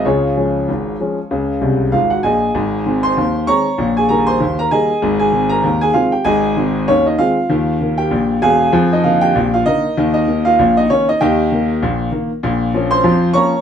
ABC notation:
X:1
M:2/4
L:1/16
Q:"Swing 16ths" 1/4=97
K:Db
V:1 name="Grand piano"
[FAd]8- | [FAd]4 [Ff] [Gg] [Aea]2- | [K:Ab] [Aea]3 [cc']3 [dbd']2- | [dbd'] [Aa] [Bb] [cc']2 [Bb] [Aea]2- |
[Aea] [Aa]2 [Bb]2 [Aa] [Ff] [Gg] | [Aea]4 [Dd] [Ee] [Ff]2- | [Ff]3 [Gg]3 [Afa]2- | [Afa] [Ee] [Ff] [Gg]2 [Ff] [EBe]2- |
[EBe] [Ee]2 [Ff]2 [Ee] [Dd] [Ee] | [Geg]4 z4 | [K:Bbm] z3 [cc']3 [dbd']2 |]
V:2 name="Grand piano" clef=bass
[D,,D,]2 [F,A,D]2 [A,,,A,,]2 [F,A,D]2 | [D,,D,]2 [C,,C,]2 [A,,,A,,]2 [B,,,B,,]2 | [K:Ab] [A,,,A,,]2 [E,A,C]2 [E,,E,]2 [E,A,C]2 | [B,,,B,,]2 [E,G,B,]2 [E,,E,]2 [E,G,B,]2 |
[A,,,A,,]2 [E,A,C]2 [E,,E,]2 [E,A,C]2 | [A,,,A,,]2 [E,A,C]2 [E,,E,]2 [E,A,C]2 | [E,,E,]2 [E,B,]2 [B,,,B,,]2 [_F,,,_F,,]2 | [F,,F,]2 [=D,B,]2 [B,,,B,,]2 [D,B,]2 |
[E,,E,]2 [E,B,]2 [B,,,B,,]2 [E,B,]2 | [E,,E,]2 [E,B,]2 [B,,,B,,]2 [E,B,]2 | [K:Bbm] [B,,,B,,]2 [F,B,D]2 [F,,F,]2 [F,B,D]2 |]